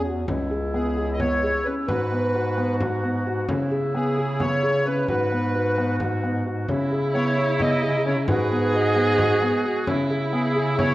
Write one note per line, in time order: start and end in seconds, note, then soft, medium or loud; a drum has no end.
0.00 0.24 E2 medium
0.06 0.25 F#4 medium
0.28 1.72 C#2 medium
0.28 1.87 C#3 medium
0.28 1.87 B3 medium
0.28 0.48 C#4 medium
0.28 1.87 E4 medium
0.28 frame drum medium
0.51 0.70 G#4 medium
0.74 0.93 B3 medium
0.74 1.10 G#4 medium
0.97 1.16 G#4 medium
1.13 1.20 D#5 medium
1.20 1.39 B3 medium
1.20 1.67 C#5 medium
1.20 frame drum medium
1.43 1.62 G#4 medium
1.43 frame drum soft
1.65 1.85 C#4 medium
1.65 1.75 B4 medium
1.87 3.46 G#2 medium
1.87 3.47 B2 medium
1.87 3.47 G#3 medium
1.87 2.08 F#4 medium
1.87 3.47 F#4 medium
1.87 2.76 B4 medium
1.87 frame drum medium
2.12 2.31 B3 medium
2.35 2.54 F#4 medium
2.58 2.77 B3 medium
2.80 2.99 F#4 medium
2.80 frame drum medium
3.03 3.23 B3 medium
3.03 frame drum soft
3.27 3.46 F#4 medium
3.48 5.07 C#3 medium
3.48 5.06 C#3 medium
3.48 5.07 B3 medium
3.48 3.68 C#4 medium
3.48 5.07 E4 medium
3.48 frame drum medium
3.71 3.91 G#4 medium
3.95 4.14 B3 medium
3.95 4.42 G#4 medium
4.17 4.37 G#4 medium
4.40 4.59 B3 medium
4.40 4.88 C#5 medium
4.40 frame drum medium
4.63 4.82 G#4 medium
4.63 frame drum soft
4.86 5.05 C#4 medium
4.86 5.07 B4 medium
5.09 6.66 G#2 medium
5.09 6.67 B2 medium
5.09 6.67 G#3 medium
5.09 6.67 F#4 medium
5.09 5.28 F#4 medium
5.09 5.96 B4 medium
5.09 frame drum soft
5.32 5.51 B3 medium
5.55 5.74 F#4 medium
5.78 5.97 B3 medium
6.00 6.20 F#4 medium
6.00 frame drum soft
6.23 6.43 B3 medium
6.46 6.65 F#4 medium
6.68 8.25 C#3 medium
6.68 8.12 C#3 medium
6.68 8.12 B3 medium
6.68 6.88 C#4 medium
6.68 8.24 E4 medium
6.68 8.12 E4 medium
6.68 frame drum soft
6.92 7.11 G#4 medium
7.14 7.34 B3 medium
7.14 7.61 C#5 medium
7.38 7.57 G#4 medium
7.60 7.79 B3 medium
7.60 8.03 D#5 medium
7.60 frame drum soft
7.82 8.02 G#4 medium
7.82 frame drum soft
8.06 8.25 C#4 medium
8.06 8.16 C#5 medium
8.28 9.71 G#2 medium
8.28 9.86 B2 medium
8.28 9.86 G#3 medium
8.28 8.48 F#4 medium
8.28 9.86 F#4 medium
8.28 9.90 G#4 loud
8.28 8.76 B4 medium
8.28 frame drum medium
8.51 8.70 B3 medium
8.73 8.93 F#4 medium
8.73 9.38 D#5 medium
8.96 9.15 B3 medium
9.18 9.38 F#4 medium
9.18 frame drum medium
9.41 9.61 B3 medium
9.41 frame drum soft
9.65 9.84 F#4 medium
9.87 10.95 C#3 medium
9.87 10.95 B3 medium
9.87 10.07 C#4 medium
9.87 10.95 E4 medium
9.87 frame drum medium
10.10 10.29 G#4 medium
10.33 10.52 B3 medium
10.33 10.76 G#4 medium
10.56 10.75 G#4 medium
10.78 10.95 B3 medium
10.78 10.95 C#5 loud
10.78 frame drum medium